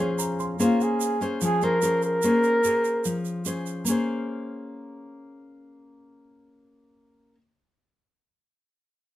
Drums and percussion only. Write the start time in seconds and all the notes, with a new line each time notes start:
0.19 shaker
0.40 shaker
0.60 shaker
0.81 shaker
1.01 shaker
1.21 shaker
1.41 shaker
1.62 shaker
1.82 shaker
2.02 shaker
2.22 shaker
2.43 shaker
2.64 shaker
2.85 shaker
3.05 shaker
3.25 shaker
3.45 shaker
3.66 shaker
3.86 shaker